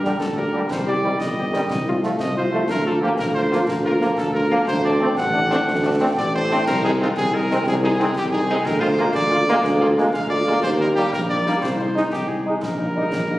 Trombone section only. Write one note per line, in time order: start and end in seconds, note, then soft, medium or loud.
0.04 0.10 D3 medium
0.04 0.10 G3 medium
0.54 0.60 D3 medium
0.54 0.60 G3 medium
1.03 1.09 D#3 medium
1.03 1.09 G3 medium
1.53 1.59 D#3 medium
1.53 1.59 G3 medium
2.03 2.09 F3 medium
2.03 2.09 A3 medium
2.52 2.58 F3 medium
2.52 2.58 A3 medium
3.01 3.07 F3 medium
3.01 3.08 A#3 medium
3.52 3.58 F3 medium
3.52 3.58 A#3 medium
4.01 4.07 F3 medium
4.01 4.07 A#3 medium
4.51 4.57 F3 medium
4.51 4.57 A#3 medium
5.01 5.07 A3 medium
5.01 5.07 C4 medium
5.50 5.57 A3 medium
5.50 5.56 C4 medium
6.00 6.06 A3 medium
6.00 6.07 C4 loud
6.50 6.56 A3 medium
6.50 6.56 C4 medium
7.00 7.06 G#3 medium
7.00 7.07 C4 medium
7.50 7.56 G#3 medium
7.50 7.57 C4 medium
8.00 8.06 G#3 medium
8.00 8.06 C4 loud
8.49 8.56 G#3 medium
8.49 8.55 C4 medium
8.98 9.04 G#3 medium
8.98 9.05 A#3 medium
9.49 9.56 G#3 medium
9.49 9.55 A#3 loud
9.98 10.04 G#3 loud
9.98 10.04 A#3 medium
10.47 10.54 G#3 medium
10.47 10.53 A#3 medium
10.96 11.02 G3 medium
10.96 11.03 A#3 medium
11.47 11.53 G3 medium
11.47 11.53 A#3 medium
11.95 12.02 G#3 medium
11.95 12.01 D#4 medium
12.46 12.52 G#3 medium
12.46 12.53 D#4 medium
12.96 13.02 G3 medium
12.96 13.02 D#4 medium